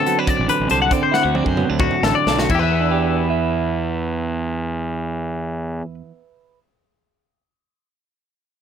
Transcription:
0.00 0.47 D3 medium
0.00 0.90 C4 soft
0.00 0.70 F#4 soft
0.00 0.19 A4 medium
0.06 0.89 F#3 medium
0.06 0.19 B3 medium
0.06 closed hi-hat medium
0.19 0.92 D4 soft
0.19 0.28 B4 medium
0.27 0.49 D5 medium
0.27 kick medium
0.27 closed hi-hat medium
0.39 0.47 A1 medium
0.48 0.88 D3 medium
0.48 0.70 B4 medium
0.48 closed hi-hat medium
0.60 0.68 A1 medium
0.70 0.88 C2 medium
0.70 0.89 A4 soft
0.70 0.81 C5 medium
0.70 closed hi-hat medium
0.82 0.93 F#5 medium
0.91 2.03 D3 medium
0.91 1.33 C4 soft
0.91 1.03 D5 medium
0.91 kick medium
0.91 closed hi-hat medium
1.03 1.13 C5 medium
1.11 1.23 E4 soft
1.11 1.36 F#5 medium
1.11 snare soft
1.23 1.42 D2 medium
1.23 2.26 F#4 soft
1.35 2.47 C4 medium
1.35 1.46 D5 medium
1.35 high tom medium
1.46 1.64 F#2 medium
1.46 1.69 C5 medium
1.46 kick soft
1.57 2.47 F#3 medium
1.57 1.70 B3 soft
1.57 mid tom medium
1.70 1.88 D2 medium
1.70 2.51 D4 soft
1.79 2.03 F#4 medium
1.79 kick medium
1.79 mid tom medium
1.91 mid tom medium
2.03 2.12 A1 medium
2.03 2.48 D3 medium
2.03 2.15 A4 medium
2.03 snare medium
2.15 2.38 D5 medium
2.26 2.45 B1 medium
2.26 2.48 A4 soft
2.26 snare medium
2.39 2.51 F#4 medium
2.39 snare medium
2.50 5.81 E2 medium
2.50 6.01 E2 medium
2.50 5.82 E4 medium
2.50 kick medium
2.50 crash medium
2.55 2.59 G4 medium
2.59 6.11 E3 medium
2.59 5.94 B4 medium
2.59 5.94 E5 medium
2.71 6.21 B3 soft
2.81 3.23 D4 soft
2.91 3.30 G4 soft
3.24 6.59 B4 medium
3.30 6.65 E5 medium

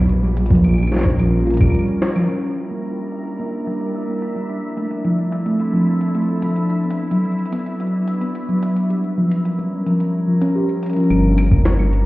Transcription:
0.09 1.74 A#1 medium
0.09 2.27 G3 medium
0.09 2.27 C#4 medium
0.09 2.27 F4 medium
0.09 2.27 A#4 medium
0.09 closed hi-hat medium
0.23 0.32 G3 medium
0.23 closed hi-hat soft
0.28 closed hi-hat soft
0.32 closed hi-hat soft
0.37 closed hi-hat medium
0.41 closed hi-hat soft
0.46 closed hi-hat medium
0.50 0.56 F3 medium
0.50 kick loud
0.50 closed hi-hat medium
0.55 closed hi-hat medium
0.64 closed hi-hat medium
0.64 claves soft
0.69 claves soft
0.73 claves soft
0.78 closed hi-hat soft
0.78 claves medium
0.82 closed hi-hat soft
0.82 claves medium
0.85 closed hi-hat soft
0.85 claves medium
0.88 1.01 G3 medium
0.88 snare medium
0.88 closed hi-hat soft
0.92 snare medium
0.92 closed hi-hat soft
0.95 snare medium
0.95 closed hi-hat soft
0.99 snare medium
0.99 closed hi-hat medium
1.01 snare medium
1.03 kick loud
1.03 snare loud
1.19 1.25 F3 medium
1.19 closed hi-hat medium
1.19 claves medium
1.40 closed hi-hat soft
1.47 1.56 F4 medium
1.47 closed hi-hat soft
1.50 closed hi-hat medium
1.54 closed hi-hat medium
1.57 kick loud
1.57 closed hi-hat medium
1.61 1.70 G3 loud
1.61 closed hi-hat medium
1.61 claves medium
1.70 claves medium
1.74 closed hi-hat soft
1.79 claves soft
1.88 2.01 C#4 medium
1.88 closed hi-hat soft
2.02 snare loud
2.16 2.29 F3 medium
2.16 closed hi-hat medium
2.16 claves medium
2.29 2.35 G3 medium
2.29 4.48 G3 medium
2.29 4.48 A#3 medium
2.29 6.66 D4 medium
2.29 11.11 E4 medium
2.29 4.48 A#4 medium
2.29 11.11 E5 medium
2.29 closed hi-hat soft
2.43 closed hi-hat soft
2.57 closed hi-hat medium
2.71 2.80 A#3 medium
2.71 closed hi-hat soft
2.85 closed hi-hat soft
2.98 3.04 G3 medium
2.98 closed hi-hat soft
3.12 closed hi-hat medium
3.26 closed hi-hat soft
3.39 3.49 A#3 medium
3.39 closed hi-hat medium
3.67 3.73 G3 medium
3.67 closed hi-hat medium
3.81 closed hi-hat medium
3.95 closed hi-hat soft
4.08 4.18 A#3 medium
4.15 closed hi-hat soft
4.22 closed hi-hat medium
4.29 closed hi-hat soft
4.36 4.42 G3 medium
4.36 closed hi-hat soft
4.50 6.68 F3 medium
4.50 6.68 C4 medium
4.50 6.68 A4 medium
4.50 closed hi-hat medium
4.63 closed hi-hat soft
4.67 closed hi-hat soft
4.70 closed hi-hat soft
4.74 4.87 A3 medium
4.74 closed hi-hat soft
4.77 closed hi-hat medium
4.81 closed hi-hat soft
4.84 closed hi-hat soft
4.87 closed hi-hat soft
4.91 closed hi-hat medium
5.05 5.10 F3 medium
5.05 closed hi-hat soft
5.18 closed hi-hat soft
5.32 closed hi-hat medium
5.46 5.55 A3 medium
5.46 closed hi-hat soft
5.60 closed hi-hat medium
5.74 5.79 F3 medium
5.74 closed hi-hat soft
6.01 closed hi-hat medium
6.15 6.24 A3 medium
6.15 closed hi-hat soft
6.22 closed hi-hat soft
6.42 6.48 F3 medium
6.42 closed hi-hat medium
6.56 closed hi-hat soft
6.70 8.88 F#3 medium
6.70 8.88 B3 medium
6.70 8.88 D4 medium
6.70 8.88 B4 medium
6.70 closed hi-hat soft
6.84 6.93 B3 medium
6.84 closed hi-hat soft
6.90 closed hi-hat medium
7.11 7.17 F#3 medium
7.11 closed hi-hat soft
7.25 closed hi-hat soft
7.32 closed hi-hat soft
7.39 closed hi-hat soft
7.46 closed hi-hat soft
7.52 7.62 B3 medium
7.52 closed hi-hat medium
7.66 closed hi-hat soft
7.80 7.86 F#3 medium
7.80 closed hi-hat medium
7.87 closed hi-hat soft
8.08 closed hi-hat medium
8.21 8.31 B3 medium
8.21 closed hi-hat medium
8.35 closed hi-hat soft
8.49 8.54 F#3 medium
8.49 closed hi-hat soft
8.63 closed hi-hat medium
8.76 closed hi-hat medium
8.90 11.08 F3 medium
8.90 8.99 G3 medium
8.90 11.08 G3 medium
8.90 11.08 C#4 medium
8.90 11.08 A#4 medium
8.90 closed hi-hat soft
9.04 closed hi-hat soft
9.18 9.23 F3 medium
9.31 closed hi-hat soft
9.45 closed hi-hat medium
9.59 9.68 G3 medium
9.59 closed hi-hat soft
9.86 9.92 F3 medium
9.86 closed hi-hat soft
10.00 closed hi-hat soft
10.28 10.33 F3 medium
10.41 10.51 C#4 loud
10.41 closed hi-hat medium
10.55 10.61 G4 loud
10.69 closed hi-hat soft
10.83 closed hi-hat medium
10.86 closed hi-hat medium
10.90 closed hi-hat medium
10.93 closed hi-hat soft
10.96 11.06 F3 medium
10.96 closed hi-hat soft
11.00 closed hi-hat soft
11.03 closed hi-hat soft
11.07 12.06 G1 medium
11.07 11.16 G3 medium
11.07 closed hi-hat soft
11.10 12.06 G3 medium
11.10 12.06 A#3 medium
11.10 12.06 D4 medium
11.10 12.06 A#4 medium
11.10 closed hi-hat medium
11.10 claves medium
11.38 closed hi-hat medium
11.38 claves medium
11.52 11.61 A#3 medium
11.52 kick loud
11.65 snare loud
11.65 closed hi-hat medium
11.79 11.85 G3 medium
11.79 claves medium
11.93 closed hi-hat medium

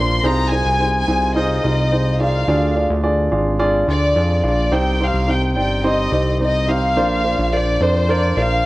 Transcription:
0.00 0.22 A#1 loud
0.00 0.25 D4 medium
0.00 0.24 F4 medium
0.00 0.25 A#4 medium
0.00 0.24 C5 medium
0.00 0.25 D5 medium
0.00 0.24 C6 medium
0.24 0.63 C2 loud
0.24 1.04 C3 medium
0.24 0.45 D#4 medium
0.24 0.45 F4 medium
0.24 0.46 G#4 medium
0.24 0.46 C5 medium
0.24 0.52 A#5 medium
0.51 0.73 D#4 medium
0.51 0.73 F4 medium
0.51 0.74 G#4 medium
0.51 0.74 C5 medium
0.51 1.35 G#5 loud
0.65 1.05 C2 medium
0.80 1.01 D#4 medium
0.80 1.01 F4 soft
0.80 1.02 G#4 medium
0.80 1.02 C5 medium
1.08 1.60 C2 medium
1.08 1.29 D#4 medium
1.08 1.29 F4 medium
1.08 1.29 G#4 medium
1.08 1.29 C5 medium
1.36 1.57 D#4 medium
1.36 1.57 F4 medium
1.36 1.57 G#4 medium
1.36 1.58 C5 medium
1.36 2.16 D#5 medium
1.64 2.44 C2 medium
1.64 1.85 D#4 medium
1.64 1.85 F4 medium
1.64 1.85 G#4 medium
1.64 1.85 D#5 medium
1.92 2.14 D#4 medium
1.92 2.14 F4 medium
1.92 2.14 G#4 medium
1.92 2.14 C5 medium
2.20 2.42 D#4 medium
2.20 2.42 F4 medium
2.20 2.42 G#4 medium
2.20 2.42 D5 medium
2.20 2.76 F5 medium
2.48 2.87 D2 medium
2.48 3.28 D3 medium
2.48 2.70 D4 medium
2.48 2.69 F4 medium
2.48 2.70 G#4 medium
2.48 2.70 D5 medium
2.76 2.98 D4 medium
2.76 2.97 F4 medium
2.76 2.97 G#4 medium
2.76 2.98 D5 medium
2.90 3.29 D2 medium
3.03 3.25 D4 medium
3.03 3.25 F4 medium
3.03 3.25 G#4 medium
3.03 3.25 D5 medium
3.31 3.84 G#1 medium
3.31 3.53 D4 medium
3.31 3.54 F4 medium
3.31 3.54 G#4 medium
3.31 3.54 F5 medium
3.59 3.82 D4 medium
3.59 3.81 F4 medium
3.59 3.81 G#4 medium
3.59 3.82 D5 loud
3.87 4.14 D2 medium
3.87 4.10 D4 medium
3.87 4.09 F4 medium
3.87 4.10 G#4 medium
3.87 4.09 D5 medium
3.87 4.41 D5 medium
4.16 4.42 F2 medium
4.16 4.38 D4 medium
4.16 4.38 F4 medium
4.16 4.38 G#4 medium
4.16 4.38 D5 medium
4.43 4.70 A#1 medium
4.43 4.65 D4 medium
4.43 4.65 F4 medium
4.43 4.65 G#4 soft
4.43 4.71 D5 medium
4.43 4.65 F5 medium
4.72 5.11 C2 loud
4.72 5.52 C3 medium
4.72 4.94 C4 medium
4.72 4.94 D#4 medium
4.72 4.94 G4 medium
4.72 4.94 C5 medium
4.72 5.01 G5 medium
5.00 5.22 C4 medium
5.00 5.22 D#4 medium
5.00 5.22 G4 medium
5.00 5.22 C5 medium
5.00 5.29 F5 medium
5.14 5.57 C2 loud
5.28 5.50 C4 medium
5.28 5.50 D#4 medium
5.28 5.50 G4 medium
5.28 5.50 C5 medium
5.28 5.85 G5 medium
5.56 6.08 G1 medium
5.56 5.78 C4 medium
5.56 5.78 D#4 medium
5.56 5.78 G4 soft
5.56 5.78 D5 medium
5.84 6.06 C4 medium
5.84 6.06 D#4 medium
5.84 6.06 G4 medium
5.84 6.06 C5 medium
5.84 6.37 D#5 medium
6.12 6.98 C2 medium
6.12 6.34 C4 medium
6.12 6.34 D#4 medium
6.12 6.34 G4 medium
6.12 6.34 C5 medium
6.40 6.62 C4 medium
6.40 6.62 D#4 medium
6.40 6.62 G4 medium
6.40 6.62 C5 medium
6.40 6.67 D#5 medium
6.68 6.90 C4 medium
6.68 6.90 D#4 medium
6.68 6.90 G4 medium
6.68 6.90 C5 medium
6.68 7.53 F5 medium
6.96 7.36 A#1 loud
6.96 7.77 A#2 medium
6.96 7.18 D4 medium
6.96 7.18 F4 medium
6.96 7.18 A#4 medium
6.96 7.18 C5 medium
7.24 7.46 D4 medium
7.24 7.46 F4 medium
7.24 7.46 A#4 medium
7.24 7.46 C5 medium
7.39 7.78 A#1 loud
7.53 7.74 D4 medium
7.53 7.74 F4 medium
7.53 7.75 A#4 soft
7.53 7.75 C5 medium
7.53 7.81 D5 medium
7.80 8.33 F2 medium
7.80 8.03 D4 medium
7.80 8.02 F4 medium
7.80 8.03 A#4 medium
7.80 8.09 C5 medium
7.80 8.03 D5 medium
8.09 8.31 D4 medium
8.09 8.30 F4 medium
8.09 8.31 A#4 medium
8.09 8.31 C5 medium
8.09 8.37 D5 medium
8.37 8.63 A#1 medium
8.37 8.58 D4 medium
8.37 8.58 F4 medium
8.37 8.58 A#4 medium
8.37 8.58 C5 medium
8.37 8.66 F5 medium

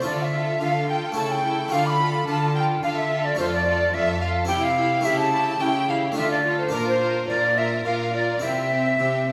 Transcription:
0.01 1.11 A3 soft
0.01 1.12 F4 soft
0.01 1.12 A4 soft
0.05 0.54 D3 soft
0.05 0.51 D3 soft
0.05 0.33 F4 soft
0.05 0.33 A4 soft
0.05 0.20 D5 medium
0.05 0.12 D5 medium
0.18 0.61 E5 soft
0.18 0.25 F#5 medium
0.24 0.61 E5 medium
0.34 0.60 F4 soft
0.34 0.60 A4 soft
0.60 1.07 D3 soft
0.60 1.10 D3 medium
0.60 0.89 F4 soft
0.60 0.87 A4 soft
0.60 0.88 F5 medium
0.60 0.92 F5 medium
0.88 1.17 F4 soft
0.88 1.15 A4 soft
0.88 1.16 G5 soft
0.88 1.19 G5 medium
1.12 1.67 A3 soft
1.12 1.69 E4 soft
1.12 1.70 A4 soft
1.17 1.66 C#3 soft
1.17 1.63 C#3 soft
1.17 1.43 E4 soft
1.17 1.43 A4 soft
1.17 1.31 A5 medium
1.17 1.33 A5 medium
1.30 1.72 G5 soft
1.30 1.74 G5 medium
1.44 1.72 E4 soft
1.44 1.70 A4 soft
1.68 2.21 D3 soft
1.68 3.33 A3 soft
1.68 3.34 F4 soft
1.68 1.99 A4 soft
1.68 3.35 A4 soft
1.68 1.86 F5 medium
1.68 1.88 F5 medium
1.72 2.19 D3 soft
1.72 1.99 F4 soft
1.86 2.28 B5 medium
1.86 1.91 D6 medium
1.90 2.09 B5 medium
2.00 2.26 F4 soft
2.00 2.26 A4 soft
2.27 2.77 D3 medium
2.27 2.74 D3 soft
2.27 2.54 F4 soft
2.27 2.53 A4 soft
2.27 2.55 A5 soft
2.27 2.56 A5 medium
2.55 2.82 F4 soft
2.55 2.81 A4 soft
2.55 2.63 G5 medium
2.55 2.61 A5 medium
2.60 2.83 G5 medium
2.83 3.32 D3 soft
2.83 3.29 D3 soft
2.83 3.09 F4 soft
2.83 3.09 A4 soft
2.83 2.97 F5 medium
2.83 2.90 F5 medium
2.97 3.27 E5 medium
2.97 3.25 E5 soft
3.10 3.38 F4 soft
3.10 3.37 A4 soft
3.25 3.39 D5 medium
3.35 3.88 F2 medium
3.35 4.45 A3 soft
3.35 4.46 F4 soft
3.35 3.65 F4 soft
3.35 4.46 A4 soft
3.35 3.65 A4 soft
3.39 3.85 F2 soft
3.39 3.53 C5 medium
3.39 3.46 C5 medium
3.53 3.96 D5 medium
3.53 3.94 D5 medium
3.66 3.93 F4 soft
3.66 3.93 A4 soft
3.94 4.43 F2 medium
3.94 4.40 F2 soft
3.94 4.21 F4 soft
3.94 4.22 A4 soft
3.94 4.21 E5 medium
3.94 4.22 E5 medium
4.21 4.50 F4 soft
4.21 4.50 A4 soft
4.21 4.47 F5 medium
4.21 4.30 F5 medium
4.45 5.02 C4 soft
4.45 5.01 E4 soft
4.45 5.03 G4 soft
4.45 4.54 G5 medium
4.49 4.99 C3 soft
4.49 4.96 C3 soft
4.49 4.76 E4 soft
4.49 4.78 G4 soft
4.49 4.63 G5 medium
4.62 5.07 F5 medium
4.62 5.06 F5 medium
4.77 5.04 E4 soft
4.77 5.06 G4 soft
5.01 6.11 A3 soft
5.01 6.13 E4 soft
5.01 5.31 E4 soft
5.01 6.13 G4 soft
5.01 5.19 E5 medium
5.05 5.55 C#3 medium
5.05 5.52 C#3 soft
5.05 5.33 G4 medium
5.05 5.19 E5 medium
5.18 5.60 A5 medium
5.18 5.63 A5 medium
5.32 5.60 E4 soft
5.32 5.60 G4 soft
5.60 6.07 C#3 soft
5.60 6.11 C#3 medium
5.60 5.88 E4 soft
5.60 5.88 G4 soft
5.60 5.89 G5 medium
5.60 5.92 G5 medium
5.89 6.17 E4 soft
5.89 6.17 G4 soft
5.89 5.97 F5 medium
5.89 6.18 F5 medium
6.12 6.69 A3 soft
6.12 6.69 D4 soft
6.12 6.71 F4 soft
6.17 6.64 D3 soft
6.17 6.67 D3 medium
6.17 6.44 F4 soft
6.17 6.44 A4 soft
6.17 6.23 E5 medium
6.17 6.31 E5 medium
6.31 6.59 D5 medium
6.31 6.40 D5 soft
6.45 6.72 F4 soft
6.45 6.73 A4 soft
6.60 6.65 C5 soft
6.60 6.75 C5 medium
6.69 8.36 A#3 soft
6.69 8.37 D4 soft
6.69 8.38 F4 soft
6.69 6.99 A#4 medium
6.73 7.23 A#2 soft
6.73 7.20 A#2 soft
6.73 7.00 F4 soft
6.73 6.87 A#4 medium
6.73 6.88 A#4 medium
6.88 7.29 C5 medium
7.00 7.28 F4 soft
7.00 7.26 A#4 soft
7.27 7.79 A#2 medium
7.27 7.77 A#2 soft
7.27 7.57 F4 soft
7.27 7.55 A#4 soft
7.27 7.58 D5 medium
7.27 7.60 D5 medium
7.56 7.85 F4 soft
7.56 7.84 A#4 soft
7.56 7.85 E5 soft
7.56 7.86 E5 medium
7.85 8.33 A#2 soft
7.85 8.36 A#2 medium
7.85 8.13 F4 soft
7.85 8.13 A#4 soft
7.85 8.14 F5 medium
7.85 7.92 F5 medium
8.14 8.42 F4 soft
8.14 8.42 A#4 soft
8.14 8.45 D5 medium
8.14 8.43 D5 soft
8.39 8.90 C3 soft
8.39 8.93 C3 soft
8.39 9.32 C4 soft
8.39 8.70 C4 soft
8.39 9.32 E4 soft
8.39 8.70 G4 soft
8.39 9.32 E5 medium
8.71 8.99 C4 soft
8.71 8.97 G4 soft
8.98 9.32 C3 medium
8.98 9.32 C3 soft
8.98 9.26 C4 soft
8.98 9.26 G4 soft
9.27 9.32 C4 soft
9.27 9.32 G4 soft

